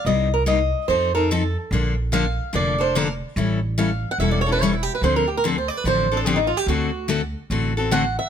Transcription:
X:1
M:4/4
L:1/16
Q:"Swing" 1/4=145
K:Dphr
V:1 name="Steel-string acoustic guitar"
e2 B2 e4 c2 B2 A2 z2 | z4 f4 d2 c2 B2 z2 | z4 f3 ^f =e d ^c =B c =E G B | c B G B A c d =B c3 A G E F G |
^F4 z8 ^f2 =e2 |]
V:2 name="Steel-string acoustic guitar"
[C,G,B,EG]2 z2 [C,G,B,EG]2 z2 [F,CEA]2 [CEA]2 [F,CEA]2 z2 | [D,F,B,DA]2 z2 [D,F,B,DA]2 z2 [D,F,B,DA]2 [B,DA]2 [D,F,B,DA]2 z2 | [=E,G,^C=EA]2 z2 [E,G,CEA]2 z2 [E,G,CEA]2 [CEA]2 [E,G,CEA]2 z2 | [D,F,CDA]2 z2 [D,F,CDA]2 z2 [D,F,CDA]2 [CDA]2 [D,F,CDA]2 z2 |
[D,A,C^FA]2 z2 [D,A,CFA]2 z2 [D,A,CFA]2 [CFA]2 [D,A,CFA]2 z2 |]
V:3 name="Upright bass" clef=bass
C,,8 F,,8 | B,,,8 F,,,8 | A,,,8 =E,,,8 | D,,8 A,,,8 |
D,,8 A,,,8 |]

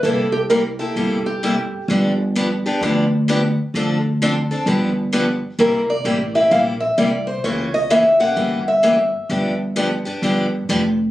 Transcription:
X:1
M:4/4
L:1/8
Q:"Swing" 1/4=130
K:C
V:1 name="Steel-string acoustic guitar"
A G _B A2 G3- | G z6 z | z8 | _B d2 e f e d c |
^c _e =e ^f2 e3- | e z6 z |]
V:2 name="Steel-string acoustic guitar"
[C,G,_B,EG] z [C,G,B,EG] [B,EG] [C,G,B,EG] z [C,G,B,EG] z | [D,F,B,DG] z [D,F,B,DG] [B,DG] [D,F,B,DG] z [D,F,B,DG] z | [D,F,CDA] z [D,F,CDA] [CDA] [D,F,B,DG] z [D,F,B,DG] z | [C,G,_B,EG] z [C,G,B,EG] [B,EG] [C,G,B,EG] z [C,G,B,EG] z |
[^C,E,^A,^CG] z [C,E,A,CG] [A,CG] [C,E,A,CG] z [C,E,A,CG] z | [D,F,B,DG] z [D,F,B,DG] [B,DG] [D,F,B,DG] z [D,F,B,DG] z |]
V:3 name="Upright bass" clef=bass
C,,4 G,,,4 | G,,,4 D,,4 | D,,4 G,,,4 | C,,2 A,,,2 _B,,,2 C,,2 |
^C,,4 G,,,4 | G,,,4 G,,,2 F,,,2 |]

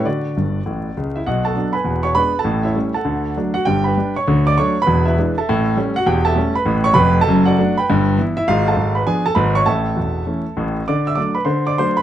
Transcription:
X:1
M:4/4
L:1/16
Q:"Swing" 1/4=200
K:D
V:1 name="Grand piano"
[Fd]12 z2 [Ee]2 | [Ff]2 [Afa]4 [B^gb]4 [cc']2 [Bb]3 [Aa]- | [Aa]2 [Ece]4 [Afa]6 z2 [Ff]2 | [Gg]2 [Bgb]4 [cc']4 [dd']2 [cc']3 [Bb]- |
[Bb]2 [EBe]4 [Aea]6 z2 [Ff]2 | [Gg]2 [Aea]4 [Bb]4 [cc']2 [Bb]3 [Aa]- | [Aa]2 [Fdf]4 [Bgb]6 z2 [Ee]2 | [^E^e]2 [Aea]4 [Bb]2 [^G^g]2 [Aa]2 [Bb]2 [cc']2 |
[Aea]12- [Aea]2 z2 | [dd']2 [ee']2 [dd']2 [Bb]2 [=c=c']2 [dd']2 [cc']2 [Bb]2 |]
V:2 name="Grand piano" clef=bass
D,4 [G,,,G,,]4 [A,,,A,,]4 [C,,C,]4 | [B,,,B,,]4 [F,B,D]4 [E,,,E,,]4 [^G,B,D]4 | [A,,,A,,]4 [G,A,C]4 [D,,D,]4 [F,A,D]4 | [G,,,G,,]4 [G,D]4 [D,,D,]4 [F,A,D]4 |
[E,,,E,,]4 [E,^G,D]4 [A,,,A,,]4 [=G,A,C]4 | [E,,,E,,]4 [G,A,C]4 [A,,,A,,]4 [=F,,,=F,,]4 | [F,,,F,,]4 [F,A,D]4 [G,,,G,,]4 [E,B,E]4 | [^G,,,^G,,]4 [G,,,G,,]4 [^E,B,D]4 [G,,,G,,]4 |
[A,,,A,,]4 [E,,,E,,]4 [E,A,C]4 [A,,,A,,]4 | D,4 [F,A,D]4 D,4 [F,A,D]4 |]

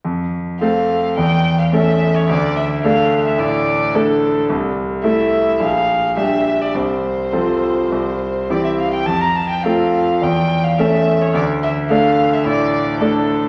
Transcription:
X:1
M:4/4
L:1/16
Q:1/4=107
K:F
V:1 name="Violin"
z4 f4 g3 f e3 ^c | d2 e2 f3 e d4 A4 | z4 e4 f4 e3 d | c12 d e f g |
a b a g f4 g3 f e3 ^c | d2 e2 f3 e d4 A4 |]
V:2 name="Grand piano"
F,,4 [A,CA]4 E,,4 [A,^CA]4 | D,,4 [A,DA]4 A,,4 [A,DA]4 | C,,4 [A,EA]4 B,,,4 [DG]4 | C,,4 [CFA]4 C,,4 [CEG]4 |
F,,4 [CFA]4 E,,4 [A,^CA]4 | D,,4 [A,DA]4 A,,4 [A,DA]4 |]
V:3 name="Cello"
z4 A,4 z4 A,4 | z4 A,4 z4 A,4 | z4 A,4 z4 G,4 | z4 F,4 z4 E,4 |
z4 A,4 z4 A,4 | z4 A,4 z4 A,4 |]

